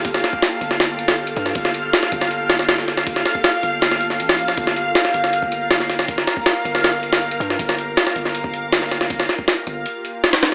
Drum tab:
HH |x-x-x-x-x-xx-xx-|x-x-x-x-x-x-x-x-|x-x-x-x-x-x-x-x-|x-x-x-x-x-x-x-x-|
SD |-oo-o--oo--o---o|-o--oo-o--oooooo|-oo-o---oo-o-o-o|-o--oo-o----oooo|
BD |o--o------------|o-----o---------|o--o------------|o--------o------|

HH |x-x-x-x-x-xx-xx-|x-x-x-x-x-x-x-x-|x-x-x-x-x-x-xxx-|
SD |-oo-o--oo--o---o|-o--oo-o----oooo|-oo-o-------ooo-|
BD |o--o------------|o--------o------|o--o------------|